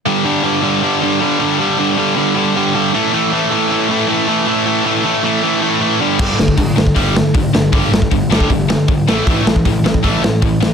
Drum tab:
CC |----------------|----------------|----------------|----------------|
HH |----------------|----------------|----------------|----------------|
SD |----------------|----------------|----------------|----------------|
BD |----------------|----------------|----------------|----------------|

CC |x---------------|----------------|----------------|
HH |----o---o---o---|o---o---o---o---|o---o---o---o---|
SD |--o---o---o---o-|--o---o---o---o-|--o---o---o---o-|
BD |o--oo--oo---o---|o--oo--oo---o---|o--oo--oo---o---|